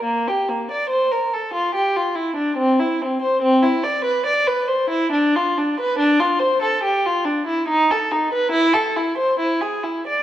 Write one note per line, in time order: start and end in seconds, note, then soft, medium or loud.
0.03 0.26 A#3 medium
0.27 0.48 G4 medium
0.49 0.70 A#3 medium
0.71 0.91 D5 medium
0.90 1.11 C5 medium
1.11 1.33 A#4 medium
1.33 1.54 A4 medium
1.53 1.74 F4 medium
1.75 1.95 G4 medium
1.96 2.17 F4 medium
2.15 2.37 E4 medium
2.36 2.57 D4 medium
2.57 2.78 C4 medium
2.79 3.00 E4 medium
3.02 3.22 C4 medium
3.22 3.42 C5 medium
3.42 3.62 C4 loud
3.63 3.84 E4 medium
3.83 4.04 D5 medium
4.04 4.25 B4 medium
4.26 4.46 D5 medium
4.47 4.69 B4 medium
4.68 4.90 C5 medium
4.90 5.12 E4 medium
5.12 5.34 D4 loud
5.35 5.57 F4 medium
5.58 5.79 D4 medium
5.80 6.00 B4 medium
5.99 6.20 D4 loud
6.20 6.41 F4 medium
6.39 6.62 C5 medium
6.62 6.83 A4 loud
6.83 7.04 G4 medium
7.06 7.26 F4 medium
7.25 7.46 D4 medium
7.47 7.67 E4 medium
7.68 7.89 D#4 loud
7.91 8.11 A4 medium
8.11 8.32 D#4 medium
8.33 8.53 B4 medium
8.52 8.73 E4 loud
8.73 8.95 A4 medium
8.96 9.17 E4 medium
9.18 9.38 C5 medium
9.39 9.60 E4 medium
9.61 9.83 G#4 medium
9.83 10.05 E4 medium
10.07 10.23 D5 medium